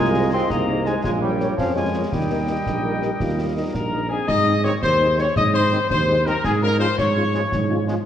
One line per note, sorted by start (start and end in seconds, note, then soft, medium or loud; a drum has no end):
0.00 0.42 C2 medium
0.00 0.30 G#3 loud
0.00 0.51 F4 medium
0.00 1.01 G#4 medium
0.00 1.01 D#5 medium
0.00 0.30 G#5 medium
0.15 0.21 D#4 medium
0.15 0.22 G#4 medium
0.15 0.21 C5 medium
0.15 0.21 D#5 medium
0.32 0.49 C4 loud
0.32 0.40 D#4 medium
0.32 0.40 G#4 medium
0.32 0.40 C5 medium
0.32 0.39 D#5 medium
0.32 0.52 C6 medium
0.50 0.96 C2 medium
0.50 0.86 A#3 loud
0.50 1.04 D#4 medium
0.50 0.88 A#5 medium
0.50 concert bass drum medium
0.50 snare medium
0.69 0.76 D#4 medium
0.69 0.75 G#4 medium
0.69 0.76 C5 medium
0.69 0.75 D#5 medium
0.86 1.02 G#3 medium
0.86 0.94 D#4 medium
0.86 0.94 G#4 medium
0.86 0.93 C5 medium
0.86 0.93 D#5 medium
0.86 1.04 G#5 medium
0.86 snare medium
1.04 1.49 A#1 medium
1.04 1.21 G#3 medium
1.04 1.55 F4 medium
1.04 2.11 A#4 medium
1.04 2.13 C#5 medium
1.04 1.10 G#5 medium
1.04 concert bass drum medium
1.04 snare medium
1.22 1.56 G3 medium
1.22 1.29 F4 medium
1.22 1.29 A#4 medium
1.22 1.28 C#5 medium
1.22 1.29 C#5 medium
1.22 1.56 G5 medium
1.40 1.47 F4 medium
1.40 1.47 A#4 medium
1.40 1.46 C#5 medium
1.40 1.47 C#5 medium
1.40 snare medium
1.57 2.03 F2 medium
1.57 1.75 F3 medium
1.57 1.91 C#4 medium
1.57 1.75 F5 medium
1.57 concert bass drum medium
1.57 snare medium
1.75 2.09 G#3 medium
1.75 1.83 F4 medium
1.75 1.83 A#4 medium
1.75 1.82 C#5 medium
1.75 1.83 C#5 medium
1.75 2.14 G#5 medium
1.94 2.01 F4 medium
1.94 2.01 A#4 medium
1.94 2.01 C#5 medium
2.11 2.57 D#2 medium
2.11 4.06 G3 medium
2.11 2.59 D#4 medium
2.11 3.70 A#4 medium
2.11 3.74 D#5 medium
2.11 3.45 G5 medium
2.11 concert bass drum medium
2.11 snare medium
2.31 2.37 D#4 medium
2.31 2.37 A#4 medium
2.31 2.38 D#5 medium
2.49 2.56 D#4 medium
2.49 2.56 A#4 medium
2.49 2.55 D#5 medium
2.66 3.11 A#1 medium
2.66 3.00 D#4 medium
2.66 concert bass drum medium
2.66 snare medium
2.84 2.91 D#4 medium
2.84 2.91 A#4 medium
2.84 2.91 D#5 medium
3.02 3.09 D#4 medium
3.02 3.11 G4 medium
3.02 3.09 A#4 medium
3.02 3.09 D#5 medium
3.02 snare soft
3.20 3.65 D#2 medium
3.20 3.54 F4 medium
3.20 concert bass drum medium
3.20 snare medium
3.39 3.46 D#4 medium
3.39 3.46 A#4 medium
3.39 3.45 D#5 medium
3.56 3.63 D#4 medium
3.56 4.11 D#4 medium
3.56 3.63 A#4 medium
3.56 3.63 D#5 medium
3.74 4.19 A#1 medium
3.74 4.08 A#4 medium
3.74 4.08 A#5 medium
3.74 concert bass drum medium
3.74 snare medium
3.92 3.99 D#4 medium
3.92 3.99 A#4 medium
3.92 3.99 D#5 soft
4.09 4.28 C4 medium
4.09 4.17 D#4 medium
4.09 4.27 G#4 medium
4.09 4.17 A#4 medium
4.09 4.16 D#5 medium
4.09 4.30 G#5 medium
4.27 4.73 G#2 medium
4.27 4.61 D#5 loud
4.27 4.64 D#5 loud
4.27 4.66 D#6 loud
4.27 concert bass drum medium
4.27 snare medium
4.27 crash medium
4.46 4.52 G#3 medium
4.46 4.53 C4 medium
4.46 4.52 D#4 medium
4.64 4.71 D#3 medium
4.64 4.71 G#3 medium
4.64 4.71 C4 medium
4.64 4.71 D#4 medium
4.64 4.72 C#5 loud
4.64 4.74 C#5 medium
4.64 4.82 C#6 medium
4.64 snare medium
4.82 5.27 D#2 medium
4.82 5.16 C5 loud
4.82 5.16 C5 medium
4.82 5.16 C6 medium
4.82 concert bass drum medium
4.82 snare medium
5.00 5.06 G#3 medium
5.00 5.06 C4 medium
5.00 5.06 D#4 medium
5.18 5.25 D#3 medium
5.18 5.24 G#3 medium
5.18 5.24 C4 medium
5.18 5.25 C4 medium
5.18 5.24 D#4 medium
5.18 5.36 C#5 loud
5.18 5.27 C#5 loud
5.18 5.25 C#6 medium
5.18 snare medium
5.36 5.77 G#2 medium
5.36 5.53 D#5 loud
5.36 5.44 D#5 loud
5.36 5.53 D#6 loud
5.36 concert bass drum medium
5.36 snare medium
5.53 5.60 G#3 medium
5.53 5.60 C4 medium
5.53 5.60 D#4 medium
5.53 5.88 C5 medium
5.53 5.88 C5 loud
5.53 5.88 C6 medium
5.72 5.79 D#3 medium
5.72 5.79 G#3 medium
5.72 5.78 C4 medium
5.72 5.79 C4 medium
5.72 5.78 D#4 medium
5.72 snare medium
5.89 6.35 D#2 medium
5.89 6.23 C5 loud
5.89 6.24 C5 loud
5.89 6.24 C6 medium
5.89 concert bass drum medium
5.89 snare medium
6.08 6.14 G#3 medium
6.08 6.14 C4 medium
6.08 6.14 D#4 medium
6.25 6.33 D#3 medium
6.25 6.32 G#3 medium
6.25 6.32 C4 medium
6.25 6.33 C4 medium
6.25 6.32 D#4 medium
6.25 6.44 A#4 loud
6.25 6.35 A#4 medium
6.25 6.44 A#5 medium
6.25 snare medium
6.44 6.89 G#2 medium
6.44 6.52 G#4 loud
6.44 6.61 G#4 loud
6.44 6.51 G#5 loud
6.44 concert bass drum medium
6.44 snare medium
6.44 crash soft
6.62 6.68 G#3 medium
6.62 6.69 C#4 medium
6.62 6.68 F4 medium
6.62 6.80 A#4 medium
6.62 6.79 A#4 loud
6.62 6.79 A#5 medium
6.79 6.87 F3 medium
6.79 6.86 G#3 medium
6.79 6.86 C#4 medium
6.79 6.86 F4 medium
6.79 6.96 C5 medium
6.79 6.96 C5 loud
6.79 6.97 C6 medium
6.79 snare medium
6.98 7.43 G#2 medium
6.98 7.84 C#5 loud
6.98 7.84 C#6 loud
6.98 concert bass drum medium
6.98 snare medium
7.16 7.22 G#3 medium
7.16 7.22 C#4 medium
7.16 7.22 F4 medium
7.34 7.41 F3 medium
7.34 7.40 G#3 medium
7.34 7.41 G#3 medium
7.34 7.41 C#4 medium
7.34 7.41 F4 medium
7.34 snare medium
7.52 7.97 G#2 medium
7.52 concert bass drum medium
7.52 snare medium
7.69 7.76 G#3 medium
7.69 7.76 C#4 medium
7.69 7.76 F4 medium
7.87 7.94 F3 medium
7.87 7.93 G#3 medium
7.87 7.94 G#3 medium
7.87 7.94 C#4 medium
7.87 7.94 F4 medium
7.87 snare medium